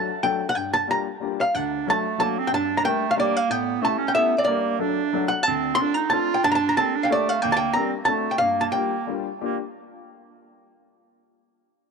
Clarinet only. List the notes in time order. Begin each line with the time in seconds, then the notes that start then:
1.56 D4
1.89 A3
2.22 A#3
2.39 C4
2.54 D4
2.87 A3
3.19 A#3
3.51 B3
3.82 A3
3.98 C#4
4.15 B3
4.38 C4
4.47 A#3
4.80 D4
5.47 C4
5.81 D4
5.96 D#4
6.13 F4
6.44 D4
6.78 C4
6.96 D4
7.11 A3
7.43 A#3
7.76 C4
8.08 A3
8.40 A#3
9.42 A#3